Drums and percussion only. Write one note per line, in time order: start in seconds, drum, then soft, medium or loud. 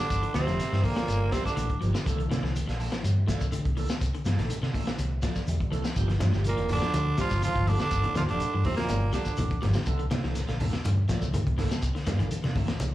0.10 kick medium
0.10 closed hi-hat medium
0.10 shekere medium
0.23 closed hi-hat soft
0.34 snare medium
0.34 closed hi-hat soft
0.34 shekere medium
0.48 snare soft
0.48 closed hi-hat soft
0.48 shekere soft
0.60 snare soft
0.60 closed hi-hat medium
0.60 shekere medium
0.72 snare soft
0.84 kick medium
0.84 open hi-hat medium
0.84 shekere soft
0.96 snare medium
0.96 closed hi-hat soft
0.96 shekere soft
1.08 closed hi-hat medium
1.08 shekere medium
1.32 kick medium
1.32 snare medium
1.32 closed hi-hat soft
1.32 shekere medium
1.45 kick medium
1.45 snare soft
1.45 closed hi-hat soft
1.45 shekere medium
1.57 closed hi-hat medium
1.57 shekere medium
1.69 kick medium
1.69 closed hi-hat soft
1.82 closed hi-hat medium
1.82 shekere soft
1.95 snare medium
1.95 closed hi-hat soft
1.95 shekere medium
2.06 kick medium
2.06 closed hi-hat medium
2.06 shekere medium
2.20 closed hi-hat soft
2.31 snare medium
2.31 closed hi-hat medium
2.31 shekere medium
2.44 snare soft
2.44 shekere soft
2.56 closed hi-hat medium
2.56 shekere medium
2.69 snare soft
2.69 closed hi-hat soft
2.80 open hi-hat medium
2.80 shekere soft
2.92 snare medium
2.92 closed hi-hat soft
2.92 shekere soft
3.04 closed hi-hat medium
3.04 shekere medium
3.28 kick medium
3.28 snare medium
3.28 closed hi-hat medium
3.28 shekere loud
3.41 kick medium
3.41 closed hi-hat soft
3.41 shekere medium
3.52 closed hi-hat medium
3.52 shekere medium
3.65 kick medium
3.65 closed hi-hat soft
3.77 open hi-hat medium
3.77 shekere soft
3.89 snare medium
3.89 closed hi-hat soft
3.89 shekere medium
4.01 kick loud
4.01 closed hi-hat medium
4.01 shekere medium
4.14 closed hi-hat soft
4.25 snare medium
4.25 closed hi-hat medium
4.25 shekere medium
4.38 snare soft
4.38 closed hi-hat soft
4.38 shekere soft
4.50 closed hi-hat medium
4.50 shekere loud
4.63 snare soft
4.74 kick medium
4.74 open hi-hat medium
4.74 shekere soft
4.87 snare medium
4.87 closed hi-hat soft
4.87 shekere soft
4.98 closed hi-hat medium
4.98 shekere medium
5.22 kick medium
5.22 snare medium
5.22 closed hi-hat medium
5.22 shekere medium
5.36 kick medium
5.36 snare soft
5.36 closed hi-hat soft
5.36 shekere medium
5.47 closed hi-hat medium
5.47 shekere medium
5.60 kick medium
5.60 closed hi-hat soft
5.72 closed hi-hat soft
5.72 shekere soft
5.85 snare medium
5.85 closed hi-hat soft
5.85 shekere medium
5.96 kick loud
5.96 closed hi-hat medium
5.96 shekere medium
6.09 snare soft
6.09 closed hi-hat soft
6.20 snare medium
6.20 closed hi-hat soft
6.20 high conga medium
6.20 low conga medium
6.20 shekere medium
6.33 snare soft
6.33 shekere soft
6.44 closed hi-hat medium
6.44 shekere loud
6.58 closed hi-hat soft
6.69 open hi-hat medium
6.69 high conga medium
6.69 low conga medium
6.69 shekere soft
6.82 snare medium
6.82 closed hi-hat soft
6.82 shekere soft
6.94 closed hi-hat medium
6.94 high conga loud
6.94 shekere medium
7.18 kick medium
7.18 snare medium
7.18 closed hi-hat medium
7.18 shekere medium
7.30 kick medium
7.30 snare soft
7.30 closed hi-hat soft
7.30 high conga medium
7.30 shekere medium
7.42 closed hi-hat medium
7.42 high conga medium
7.42 shekere medium
7.56 kick medium
7.56 closed hi-hat soft
7.67 open hi-hat medium
7.67 low conga medium
7.67 shekere soft
7.80 snare medium
7.80 closed hi-hat soft
7.80 shekere medium
7.91 kick loud
7.91 closed hi-hat medium
7.91 shekere medium
8.03 closed hi-hat soft
8.03 high conga medium
8.15 snare medium
8.15 closed hi-hat medium
8.15 high conga medium
8.15 low conga medium
8.15 shekere medium
8.28 closed hi-hat soft
8.28 shekere soft
8.40 closed hi-hat medium
8.40 shekere medium
8.64 kick medium
8.64 open hi-hat medium
8.64 high conga medium
8.64 low conga medium
8.64 shekere soft
8.78 snare medium
8.78 closed hi-hat soft
8.78 shekere soft
8.88 closed hi-hat medium
8.88 high conga loud
8.88 shekere medium
9.13 kick medium
9.13 snare medium
9.13 closed hi-hat soft
9.13 shekere medium
9.25 kick medium
9.25 closed hi-hat soft
9.25 shekere medium
9.37 closed hi-hat medium
9.37 high conga medium
9.37 low conga medium
9.37 shekere medium
9.51 kick medium
9.51 closed hi-hat soft
9.61 snare soft
9.61 closed hi-hat soft
9.61 low conga medium
9.61 shekere soft
9.73 snare medium
9.73 closed hi-hat soft
9.73 high conga medium
9.73 shekere medium
9.86 kick medium
9.86 closed hi-hat medium
9.86 shekere medium
9.99 closed hi-hat soft
10.11 snare medium
10.11 closed hi-hat soft
10.11 high conga medium
10.11 shekere medium
10.23 snare soft
10.23 shekere soft
10.35 snare soft
10.35 closed hi-hat medium
10.35 shekere medium
10.48 snare soft
10.48 closed hi-hat soft
10.60 open hi-hat medium
10.60 high conga medium
10.60 low conga medium
10.60 shekere soft
10.73 snare medium
10.73 closed hi-hat soft
10.73 shekere soft
10.84 closed hi-hat medium
10.84 high conga loud
10.84 shekere medium
11.09 kick medium
11.09 snare medium
11.09 closed hi-hat soft
11.09 shekere medium
11.22 kick medium
11.22 closed hi-hat soft
11.22 high conga medium
11.22 shekere medium
11.33 closed hi-hat medium
11.33 high conga medium
11.33 low conga medium
11.33 shekere medium
11.47 kick medium
11.47 closed hi-hat soft
11.58 snare soft
11.58 open hi-hat medium
11.58 low conga medium
11.58 shekere soft
11.71 snare medium
11.71 closed hi-hat soft
11.71 high conga medium
11.71 shekere medium
11.82 kick medium
11.82 closed hi-hat medium
11.82 shekere medium
11.96 snare soft
11.96 closed hi-hat soft
12.07 snare medium
12.07 closed hi-hat medium
12.07 high conga medium
12.07 low conga medium
12.07 shekere medium
12.19 closed hi-hat soft
12.19 shekere soft
12.31 closed hi-hat medium
12.31 shekere medium
12.44 snare soft
12.44 high conga medium
12.55 kick medium
12.55 open hi-hat medium
12.55 high conga medium
12.55 low conga medium
12.55 shekere soft
12.68 snare medium
12.68 closed hi-hat soft
12.68 shekere soft
12.80 closed hi-hat medium
12.80 high conga loud
12.80 shekere medium